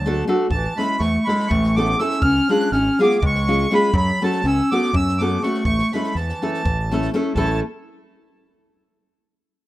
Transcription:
0.00 0.22 D2 medium
0.00 0.24 F#3 medium
0.00 0.25 A5 medium
0.06 0.23 A3 medium
0.06 0.23 D4 medium
0.06 0.24 F#4 medium
0.06 0.24 A4 medium
0.27 0.46 A3 medium
0.27 0.46 D4 medium
0.27 0.46 F#4 medium
0.27 0.46 A4 medium
0.50 0.66 A1 medium
0.50 0.75 E3 loud
0.50 0.78 A5 loud
0.50 kick medium
0.76 0.99 G#3 medium
0.76 0.96 A3 medium
0.76 0.96 C#4 medium
0.76 0.96 E4 medium
0.76 0.97 A4 medium
0.76 1.01 B5 loud
0.76 snare soft
0.99 1.17 E2 loud
0.99 1.25 A3 loud
0.99 1.28 C#6 loud
0.99 snare soft
1.25 1.49 G#3 loud
1.25 1.46 A3 medium
1.25 1.46 C#4 medium
1.25 1.47 E4 medium
1.25 1.50 B5 loud
1.25 snare soft
1.29 1.47 A4 medium
1.40 snare soft
1.48 1.93 A1 loud
1.48 1.74 A3 loud
1.48 1.76 C#6 loud
1.48 kick loud
1.64 snare soft
1.76 1.94 A3 medium
1.76 1.99 B3 medium
1.76 1.95 C#4 medium
1.76 1.95 E4 medium
1.76 1.95 A4 medium
1.76 2.00 D6 loud
1.76 snare soft
1.99 2.17 A3 medium
1.99 2.21 C#4 medium
1.99 2.18 C#4 medium
1.99 2.18 E4 medium
1.99 2.18 A4 medium
1.99 2.23 E6 loud
1.99 snare soft
2.10 snare soft
2.22 2.39 C#2 medium
2.22 2.48 C#4 loud
2.22 2.50 F6 loud
2.22 kick loud
2.48 2.68 G#3 medium
2.48 2.68 C#4 medium
2.48 2.71 D4 loud
2.48 2.68 F4 medium
2.48 2.68 G#4 medium
2.48 2.72 F#6 loud
2.48 snare soft
2.59 snare soft
2.72 2.88 G#1 loud
2.72 2.98 C#4 loud
2.72 3.00 F6 medium
2.72 snare soft
2.99 3.18 G#3 medium
2.99 3.15 B3 medium
2.99 3.18 C#4 medium
2.99 3.18 F4 medium
2.99 3.18 G#4 medium
2.99 3.17 D6 loud
2.99 snare soft
3.10 snare soft
3.16 3.21 B3 medium
3.16 3.24 D6 medium
3.22 3.65 C#2 loud
3.22 3.67 G#3 medium
3.22 kick loud
3.26 3.74 C#6 loud
3.35 snare soft
3.47 3.66 G#3 medium
3.47 3.66 C#4 medium
3.47 3.66 F4 medium
3.47 3.67 G#4 medium
3.47 snare soft
3.69 3.91 G#3 medium
3.69 3.89 G#3 medium
3.69 3.89 C#4 medium
3.69 3.90 F4 medium
3.69 snare soft
3.73 3.90 G#4 medium
3.73 3.96 B5 loud
3.93 4.10 F#2 loud
3.93 4.18 F#3 loud
3.93 4.23 B5 loud
3.93 kick loud
4.21 4.43 F#3 medium
4.21 4.40 A3 medium
4.21 4.40 C#4 medium
4.21 4.40 F#4 medium
4.21 4.41 A4 medium
4.21 4.46 A5 loud
4.21 snare soft
4.32 snare soft
4.43 4.60 C#2 loud
4.43 4.69 C#4 loud
4.43 4.73 E6 medium
4.43 snare soft
4.71 4.90 A3 medium
4.71 4.93 B3 loud
4.71 4.90 C#4 medium
4.71 4.90 F#4 medium
4.71 4.90 A4 medium
4.71 4.95 D6 loud
4.71 snare soft
4.83 snare soft
4.93 5.36 F#2 medium
4.93 5.18 C#4 medium
4.93 5.21 E6 loud
4.93 kick loud
5.08 snare soft
5.18 5.38 A3 medium
5.18 5.41 B3 medium
5.18 5.38 C#4 medium
5.18 5.39 F#4 medium
5.18 5.42 D6 medium
5.18 snare soft
5.22 5.39 A4 medium
5.42 5.60 A3 medium
5.42 5.64 A3 medium
5.42 5.61 C#4 medium
5.42 5.61 F#4 medium
5.42 5.61 A4 medium
5.42 5.64 C#6 loud
5.42 snare soft
5.54 snare soft
5.65 5.81 A1 medium
5.65 5.90 A3 medium
5.65 5.93 C#6 loud
5.65 kick medium
5.79 snare soft
5.92 6.14 G#3 medium
5.92 6.11 A3 medium
5.92 6.11 C#4 medium
5.92 6.11 E4 medium
5.92 6.12 A4 medium
5.92 6.16 B5 medium
5.92 snare soft
6.04 snare soft
6.15 6.31 E2 medium
6.15 7.10 E3 medium
6.15 7.10 A5 medium
6.15 snare soft
6.29 snare soft
6.42 6.60 A3 medium
6.42 6.60 C#4 medium
6.42 6.61 E4 medium
6.42 6.61 A4 medium
6.54 snare soft
6.65 7.07 A1 medium
6.65 kick loud
6.91 7.09 A3 medium
6.91 7.09 C#4 medium
6.91 7.09 E4 medium
6.91 7.10 A4 medium
6.91 snare soft
7.02 snare soft
7.13 7.31 A3 medium
7.13 7.32 C#4 medium
7.13 7.32 E4 medium
7.13 7.32 A4 medium
7.13 snare soft
7.35 7.60 A1 loud
7.35 7.61 A3 medium
7.35 7.61 C#4 medium
7.35 7.61 E4 medium
7.35 7.62 A4 medium
7.35 7.60 A5 loud
7.35 kick medium

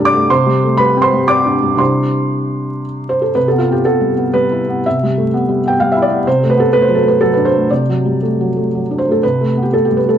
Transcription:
0.00 0.27 C3 medium
0.00 0.33 G3 medium
0.00 0.14 A3 soft
0.00 0.24 D4 soft
0.00 0.33 E5 medium
0.00 0.33 E6 medium
0.05 0.28 D5 medium
0.05 0.30 D6 medium
0.14 0.30 A3 soft
0.30 1.73 C3 medium
0.30 0.75 C5 medium
0.30 0.78 C6 medium
0.46 0.72 G3 soft
0.64 0.79 A3 soft
0.77 1.04 G3 soft
0.77 1.01 B4 medium
0.77 1.02 B5 medium
0.97 1.22 C4 soft
1.02 1.26 C5 medium
1.02 1.27 C6 medium
1.13 1.39 G3 soft
1.28 1.55 C4 soft
1.28 1.76 D5 medium
1.28 1.79 D6 medium
1.46 1.73 D4 soft
1.62 1.75 G3 soft
1.75 3.29 C3 soft
1.75 3.30 G3 soft
1.75 3.30 D4 soft
1.75 3.31 E4 soft
1.75 2.83 C6 medium
1.80 2.80 C5 soft
3.09 3.23 C5 medium
3.22 3.35 A4 soft
3.35 4.81 C3 soft
3.35 3.48 B4 medium
3.48 3.78 B3 soft
3.48 3.61 A4 medium
3.58 3.72 F4 medium
3.69 3.85 C4 soft
3.69 3.85 G4 medium
3.85 4.11 B3 soft
3.85 4.34 A4 medium
4.01 4.27 G3 soft
4.16 4.44 B3 soft
4.34 4.61 G3 soft
4.34 4.85 B4 medium
4.52 4.79 E4 soft
4.69 4.95 B3 soft
4.86 6.23 C3 soft
4.86 5.69 E5 medium
5.03 5.28 G3 soft
5.18 5.33 A3 soft
5.34 5.58 B3 soft
5.49 5.74 G3 soft
5.66 5.90 B3 soft
5.66 5.80 G5 medium
5.80 6.05 G3 soft
5.80 5.92 F5 medium
5.92 6.03 E5 medium
5.97 6.21 E4 soft
6.02 6.26 D5 medium
6.12 6.27 B3 soft
6.27 7.66 C3 soft
6.27 6.50 C5 medium
6.43 6.68 A3 soft
6.50 6.61 B4 medium
6.57 6.73 B3 soft
6.57 6.72 A4 medium
6.73 6.98 A3 soft
6.73 6.85 B4 medium
6.82 6.95 C5 medium
6.89 7.14 F#3 soft
6.95 7.08 A4 medium
7.03 7.30 A3 soft
7.08 7.20 B4 medium
7.21 7.47 F#3 soft
7.21 7.33 A4 medium
7.33 7.63 D4 soft
7.33 7.45 B4 medium
7.45 7.70 C5 medium
7.55 7.81 A3 soft
7.70 9.19 C3 soft
7.70 8.97 D5 medium
7.89 8.15 F#3 soft
8.05 8.22 G3 soft
8.22 8.49 A3 soft
8.40 8.66 F#3 soft
8.56 8.83 A3 soft
8.75 9.00 F#3 soft
8.91 9.17 D4 soft
8.98 9.10 C5 medium
9.08 9.23 A3 soft
9.08 9.23 A4 soft
9.23 10.18 C3 soft
9.23 9.60 B4 medium
9.41 9.67 A3 soft
9.57 9.73 B3 soft
9.63 9.74 G4 soft
9.73 9.99 A3 soft
9.73 9.85 A4 medium
9.85 9.97 G4 soft
9.90 10.16 G3 soft
9.97 10.09 B4 soft
10.06 10.18 A3 soft
10.06 10.18 A4 medium

